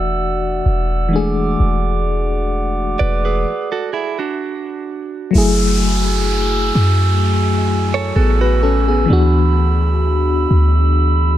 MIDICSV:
0, 0, Header, 1, 6, 480
1, 0, Start_track
1, 0, Tempo, 937500
1, 815, Time_signature, 4, 2, 24, 8
1, 5826, End_track
2, 0, Start_track
2, 0, Title_t, "Glass harmonica"
2, 0, Program_c, 0, 92
2, 0, Note_on_c, 0, 66, 61
2, 0, Note_on_c, 0, 74, 57
2, 0, Note_on_c, 0, 78, 62
2, 0, Note_on_c, 0, 88, 72
2, 554, Note_off_c, 0, 88, 0
2, 573, Note_on_c, 0, 86, 71
2, 1754, Note_off_c, 0, 66, 0
2, 1754, Note_off_c, 0, 74, 0
2, 1754, Note_off_c, 0, 78, 0
2, 1762, Note_off_c, 0, 86, 0
2, 2735, Note_on_c, 0, 88, 76
2, 2736, Note_on_c, 0, 57, 65
2, 2736, Note_on_c, 0, 66, 72
2, 2737, Note_on_c, 0, 80, 64
2, 4636, Note_off_c, 0, 57, 0
2, 4637, Note_off_c, 0, 80, 0
2, 4660, Note_on_c, 0, 62, 65
2, 4660, Note_on_c, 0, 83, 64
2, 5826, Note_off_c, 0, 62, 0
2, 5826, Note_off_c, 0, 66, 0
2, 5826, Note_off_c, 0, 83, 0
2, 5826, Note_off_c, 0, 88, 0
2, 5826, End_track
3, 0, Start_track
3, 0, Title_t, "Clean electric guitar"
3, 0, Program_c, 1, 27
3, 1533, Note_on_c, 1, 74, 70
3, 1536, Note_on_c, 1, 71, 57
3, 1657, Note_off_c, 1, 71, 0
3, 1657, Note_off_c, 1, 74, 0
3, 1663, Note_on_c, 1, 71, 77
3, 1667, Note_on_c, 1, 68, 68
3, 1892, Note_off_c, 1, 71, 0
3, 1894, Note_off_c, 1, 68, 0
3, 1904, Note_on_c, 1, 69, 78
3, 1906, Note_on_c, 1, 66, 69
3, 2009, Note_off_c, 1, 69, 0
3, 2010, Note_off_c, 1, 66, 0
3, 2012, Note_on_c, 1, 68, 77
3, 2016, Note_on_c, 1, 64, 69
3, 2136, Note_off_c, 1, 68, 0
3, 2138, Note_off_c, 1, 64, 0
3, 2144, Note_on_c, 1, 66, 70
3, 2147, Note_on_c, 1, 62, 64
3, 2714, Note_off_c, 1, 66, 0
3, 2715, Note_off_c, 1, 62, 0
3, 4066, Note_on_c, 1, 73, 77
3, 4070, Note_on_c, 1, 69, 65
3, 4170, Note_off_c, 1, 69, 0
3, 4170, Note_off_c, 1, 73, 0
3, 4177, Note_on_c, 1, 69, 78
3, 4180, Note_on_c, 1, 66, 70
3, 4299, Note_off_c, 1, 69, 0
3, 4301, Note_off_c, 1, 66, 0
3, 4306, Note_on_c, 1, 66, 78
3, 4638, Note_off_c, 1, 66, 0
3, 5826, End_track
4, 0, Start_track
4, 0, Title_t, "FM electric piano"
4, 0, Program_c, 2, 5
4, 0, Control_c, 2, 64, 127
4, 0, Note_on_c, 2, 52, 72
4, 0, Note_on_c, 2, 57, 64
4, 0, Note_on_c, 2, 62, 64
4, 0, Note_on_c, 2, 66, 82
4, 544, Note_off_c, 2, 52, 0
4, 550, Note_off_c, 2, 57, 0
4, 555, Note_on_c, 2, 52, 72
4, 557, Note_off_c, 2, 62, 0
4, 568, Note_on_c, 2, 56, 53
4, 579, Note_off_c, 2, 66, 0
4, 579, Note_on_c, 2, 62, 65
4, 592, Note_on_c, 2, 68, 82
4, 600, Note_on_c, 2, 57, 70
4, 607, Note_off_c, 2, 56, 0
4, 1745, Note_off_c, 2, 52, 0
4, 1756, Note_off_c, 2, 62, 0
4, 1763, Note_off_c, 2, 68, 0
4, 1767, Note_off_c, 2, 57, 0
4, 1781, Control_c, 2, 64, 0
4, 2717, Note_on_c, 2, 54, 77
4, 2728, Note_on_c, 2, 57, 72
4, 2741, Note_on_c, 2, 64, 69
4, 2754, Note_on_c, 2, 68, 88
4, 2845, Control_c, 2, 64, 127
4, 4158, Note_off_c, 2, 64, 0
4, 4164, Note_off_c, 2, 68, 0
4, 4177, Note_on_c, 2, 68, 62
4, 4180, Note_on_c, 2, 59, 52
4, 4299, Note_off_c, 2, 68, 0
4, 4300, Note_off_c, 2, 59, 0
4, 4306, Note_on_c, 2, 71, 69
4, 4410, Note_off_c, 2, 71, 0
4, 4417, Note_on_c, 2, 69, 70
4, 4420, Note_on_c, 2, 61, 59
4, 4539, Note_off_c, 2, 69, 0
4, 4541, Note_off_c, 2, 61, 0
4, 4547, Note_on_c, 2, 68, 66
4, 4551, Note_on_c, 2, 59, 54
4, 4625, Note_off_c, 2, 54, 0
4, 4631, Note_off_c, 2, 57, 0
4, 4636, Note_on_c, 2, 52, 77
4, 4643, Note_off_c, 2, 59, 0
4, 4649, Note_on_c, 2, 59, 72
4, 4660, Note_on_c, 2, 62, 72
4, 4661, Control_c, 2, 64, 0
4, 4673, Note_on_c, 2, 66, 89
4, 4752, Control_c, 2, 64, 127
4, 4774, Note_off_c, 2, 68, 0
4, 5826, Note_off_c, 2, 52, 0
4, 5826, Note_off_c, 2, 59, 0
4, 5826, Note_off_c, 2, 62, 0
4, 5826, Note_off_c, 2, 66, 0
4, 5826, End_track
5, 0, Start_track
5, 0, Title_t, "808-style bass"
5, 0, Program_c, 3, 38
5, 0, Note_on_c, 3, 28, 94
5, 315, Note_off_c, 3, 28, 0
5, 336, Note_on_c, 3, 28, 108
5, 796, Note_off_c, 3, 28, 0
5, 818, Note_on_c, 3, 28, 109
5, 1516, Note_off_c, 3, 28, 0
5, 1538, Note_on_c, 3, 28, 98
5, 1767, Note_off_c, 3, 28, 0
5, 2738, Note_on_c, 3, 30, 110
5, 3436, Note_off_c, 3, 30, 0
5, 3457, Note_on_c, 3, 42, 97
5, 4156, Note_off_c, 3, 42, 0
5, 4178, Note_on_c, 3, 33, 113
5, 4637, Note_off_c, 3, 33, 0
5, 4658, Note_on_c, 3, 38, 112
5, 5356, Note_off_c, 3, 38, 0
5, 5379, Note_on_c, 3, 38, 103
5, 5826, Note_off_c, 3, 38, 0
5, 5826, End_track
6, 0, Start_track
6, 0, Title_t, "Downlifter"
6, 0, Program_c, 4, 103
6, 2733, Note_on_c, 4, 60, 84
6, 5826, Note_off_c, 4, 60, 0
6, 5826, End_track
0, 0, End_of_file